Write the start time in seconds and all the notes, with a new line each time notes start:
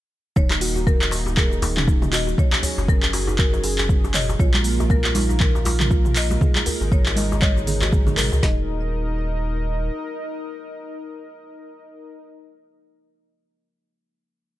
0.36 D#1 D#3 A#3 D#4 C#5, kick, shaker
0.50 D#4, clap, djembe slap, djembe tone
0.61 F#4, open hi-hat, shaker
0.75 F#4, djembe tone, shaker
0.87 A#4, kick, shaker
1.00 clap, djembe tone, shaker
1.11 A#4, open hi-hat, djembe slap, shaker
1.26 djembe tone, shaker
1.37 G#4 A#4, kick, clap, shaker
1.51 djembe tone, shaker
1.62 D#4, open hi-hat, djembe slap, djembe bass, shaker
1.77 C#4, clap, mid tom, djembe tone, shaker
1.88 D#4, kick, shaker
2.02 D#4, mid tom, djembe tone, shaker
2.13 F#4 D#5, clap, open hi-hat, shaker
2.27 F#4, djembe tone, shaker
2.38 F#3 C#4 G#4 C#5, kick, mid tom, shaker
2.52 clap, djembe slap, djembe tone
2.63 C#5, open hi-hat, djembe bass, shaker
2.78 F#1, djembe tone, shaker
2.88 A#4, kick, shaker
3.03 clap, djembe tone, shaker
3.13 F#4, open hi-hat, djembe slap, shaker
3.27 D#4, djembe tone, shaker
3.38 F#4 A#4, kick, clap, shaker
3.53 F#4, djembe tone, shaker
3.64 G#4, open hi-hat, shaker
3.78 G#4, clap, djembe tone, shaker
3.89 kick, shaker
4.04 djembe tone, shaker
4.14 C#5 D#5, clap, open hi-hat, mid tom, shaker
4.29 djembe tone, shaker
4.39 A#1 A#3 F4 A#4 C#5, kick, shaker
4.54 clap, muted conga, djembe slap, high conga, djembe tone
4.64 A#3, open hi-hat, shaker
4.79 G#3, muted conga, djembe tone, shaker
4.90 A#3 A#4, kick, shaker
5.04 A#3, clap, muted conga, djembe tone, shaker
5.15 D#4, open hi-hat, djembe slap, high conga, shaker
5.29 D#4, djembe tone, shaker
5.40 A#4, kick, clap, muted conga, low conga, shaker
5.55 djembe tone, shaker
5.65 F4, open hi-hat, muted conga, djembe slap, high conga, djembe bass, shaker
5.79 clap, mid tom, djembe tone, high conga, low conga, shaker
5.90 F4, kick, muted conga, shaker
6.05 mid tom, djembe tone, shaker
6.16 A#3 D#5, clap, open hi-hat, shaker
6.30 G#3, muted conga, high conga, djembe tone, shaker
6.41 G#3 D#4 G#4, kick, mid tom, low conga, shaker
6.55 G#4, clap, muted conga, djembe slap, high conga, djembe tone
6.66 A#4, open hi-hat, djembe bass, shaker
6.80 G#1 A#4, muted conga, djembe tone, shaker
6.92 C#5, kick, shaker
7.06 clap, muted conga, djembe tone, shaker
7.16 D#5, open hi-hat, djembe slap, high conga, shaker
7.32 djembe tone, shaker
7.41 C#5 D#5, kick, clap, muted conga, high conga, shaker
7.56 djembe tone, shaker
7.67 G#4, open hi-hat, muted conga, low conga, shaker
7.81 F#4, clap, djembe tone, shaker
7.92 G#4, kick, muted conga, shaker
8.07 G#4, djembe tone, low conga, shaker
8.17 G#1 A#4, clap, open hi-hat, mid tom, high conga, shaker
8.32 C#2 A#4, muted conga, djembe tone, shaker
8.43 D#1 D#4 A#4 D#5, kick, snare